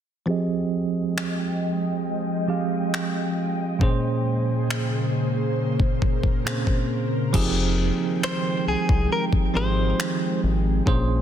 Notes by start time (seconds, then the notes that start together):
0.26 F3 G#3 C4 G4 G#4 D#5 G5
0.30 D#5
1.18 finger snap
2.48 F3 C4 G4 G#4 F5
2.94 finger snap
3.79 A#2 C#3 A#3 C#4 G#4 C5, kick
3.83 C5
4.70 finger snap
5.58 A#4
5.80 kick
6.02 kick
6.23 kick
6.45 A#2 A#3 C4 G#4 C5, finger snap
6.52 C#4
6.67 kick
7.33 F1 D#3 F3 G#3 C4 D#4 G4 G#4 G5, kick, crash
8.23 C5, finger snap
8.67 C2 G#4
8.89 C2, kick
9.12 A#4
9.33 G#1, kick
9.54 G#1 F3 C4 D#4 G4 G#4 C5
10.00 finger snap
10.44 G#1
10.86 A#1 A#2 A#3 C#4 G#4 C5, kick